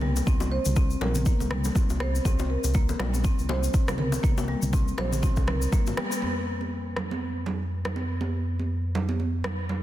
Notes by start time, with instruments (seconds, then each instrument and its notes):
Already playing: analog synth bass C2
0.01 marimba G3, mid tom, high conga
0.16 low bongo, cabasa
0.27 analog synth bass C2, marimba C4, kick, high conga, cabasa
0.40 high bongo, low bongo, cabasa
0.52 marimba C5
0.65 analog synth bass C2, mid tom, high conga, cabasa
0.76 marimba C4, kick, low bongo, cabasa
0.90 cabasa
1.01 analog synth bass A#1, marimba A#4, high bongo, low bongo, low conga
1.15 mid tom, high conga, cabasa
1.26 marimba A#3, kick, cabasa
1.40 analog synth bass C2, low bongo, cabasa
1.50 marimba G3, cross-stick, mid tom, low conga
1.64 low bongo, cabasa
1.75 marimba C4, kick, low conga, cabasa
1.90 analog synth bass C2, high bongo, cabasa
2.00 marimba C5, cross-stick, low bongo, high conga
2.15 cabasa
2.25 analog synth bass C2, marimba C4, kick, low bongo, high conga, cabasa
2.39 high bongo, cabasa
2.50 marimba A#4
2.64 analog synth bass C2, low bongo, high conga, cabasa
2.74 marimba A#3, kick, cabasa
2.89 low bongo, cabasa
2.99 analog synth bass A#1, marimba G3, cross-stick, high bongo, low conga
3.13 high conga, cabasa
3.24 marimba C4, kick, low bongo, cabasa
3.39 analog synth bass C2, cabasa
3.49 marimba C5, high bongo, low bongo, low conga
3.63 cabasa
3.74 marimba C4, kick, cabasa
3.88 analog synth bass C2, cross-stick, high bongo, low bongo, low conga, cabasa
3.98 marimba A#4, mid tom, high conga
4.12 low bongo, cabasa
4.23 analog synth bass C2, marimba A#3, kick, high conga, cabasa
4.38 high bongo, cabasa
4.48 marimba G3, low bongo
4.62 analog synth bass C2, mid tom, high conga, cabasa
4.73 marimba C4, kick, low bongo, cabasa
4.88 cabasa
4.98 analog synth bass A#1, marimba C5, cross-stick, high bongo, low conga
5.12 mid tom, low bongo, high conga, cabasa
5.22 marimba C4, kick, high bongo, high conga, cabasa
5.36 analog synth bass C2, kick, low bongo, cabasa
5.47 marimba A#4, cross-stick, mid tom, low conga
5.62 cabasa
5.72 marimba A#3, kick, low bongo, low conga, cabasa
5.86 analog synth bass G1, high bongo, cabasa
5.97 marimba G3, cross-stick, low bongo, high conga
6.12 cabasa
6.22 analog synth bass F2, high conga
6.61 high conga
6.96 cross-stick, low conga
7.11 high conga
7.46 low conga
7.85 cross-stick, low conga
7.96 high conga
8.21 high conga
8.59 high conga
8.95 low conga
9.09 high conga
9.20 high conga
9.44 cross-stick, low conga
9.69 low conga